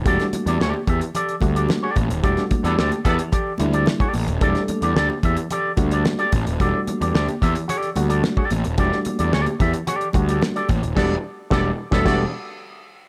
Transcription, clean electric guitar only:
\new Staff \with { instrumentName = "Clean electric guitar" } { \time 4/4 \key e \minor \tempo 4 = 110 <g' a' d''>16 r8 <g' a' d''>16 <g' a' d''>16 r16 <g' a' e''>16 r16 <g' a' d''>16 r8 <g' a' d''>16 r16 <g' a' d''>16 r8 | <g' a' d''>16 r8 <g' a' d''>16 <g' a' d''>16 r16 <g' a' e''>16 r16 <g' a' d''>16 r8 <g' a' d''>16 r16 <g' a' d''>16 r8 | <g' a' d''>16 r8 <g' a' d''>16 <g' a' d''>16 r16 <g' a' e''>16 r16 <g' a' d''>16 r8 <g' a' d''>16 r16 <g' a' d''>16 r8 | <g' a' d''>16 r8 <g' a' d''>16 <g' a' d''>16 r16 <g' a' e''>16 r16 <g' a' d''>16 r8 <g' a' d''>16 r16 <g' a' d''>16 r8 |
<g' a' d''>16 r8 <g' a' d''>16 <g' a' d''>16 r16 <g' a' e''>16 r16 <g' a' d''>16 r8 <g' a' d''>16 r16 <g' a' d''>16 r8 | <g' a' d''>8 r8 <g' a' d''>8 r16 <g' a' e''>16 <g' a' d''>8 r4. | }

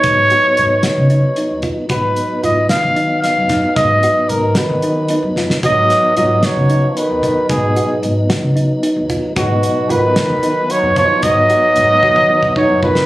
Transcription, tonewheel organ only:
\new Staff \with { instrumentName = "Tonewheel organ" } { \time 7/8 \key b \lydian \tempo 4 = 112 <fis b dis'>2.~ <fis b dis'>8 | <fis b dis'>2.~ <fis b dis'>8~ | <fis b dis'>2.~ <fis b dis'>8 | <fis b dis'>2.~ <fis b dis'>8~ |
<fis b dis'>2.~ <fis b dis'>8 | <fis b dis'>2.~ <fis b dis'>8~ | <fis b dis'>2.~ <fis b dis'>8 | }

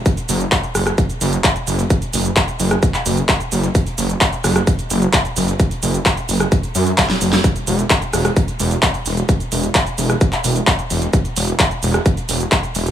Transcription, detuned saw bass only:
\new Staff \with { instrumentName = "Detuned saw bass" } { \clef bass \time 4/4 \key fis \dorian \tempo 4 = 130 r8 fis,,8 r8 fis,,8 r8 fis,,8 r8 fis,,8 | r8 fis,,8 r8 fis,,8 r8 fis,,8 r8 fis,,8 | r8 fis,,8 r8 fis,,8 r8 fis,,8 r8 fis,,8 | r8 fis,,8 r8 fis,,8 r8 fis,8 r8 fis,,8 |
r8 e,,8 r8 e,,8 r8 e,,8 r8 e,,8 | r8 e,,8 r8 e,,8 r8 e,,8 r8 e,,8 | r8 e,,8 r8 e,,8 r8 e,,8 r8 e,,8 | }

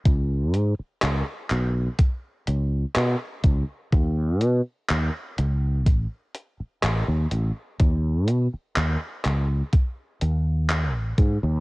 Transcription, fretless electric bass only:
\new Staff \with { instrumentName = "Fretless electric bass" } { \clef bass \time 4/4 \key a \lydian \tempo 4 = 62 cis,8 gis,16 r16 cis,16 r16 b,,16 r8. cis,16 r16 b,16 r16 cis,16 r16 | dis,8 b,16 r16 dis,16 r16 cis,8 a,,16 r8. a,,16 dis,16 a,,16 r16 | dis,8 b,16 r16 dis,16 r16 cis,16 r8. dis,8. a,,16 gis,16 dis,16 | }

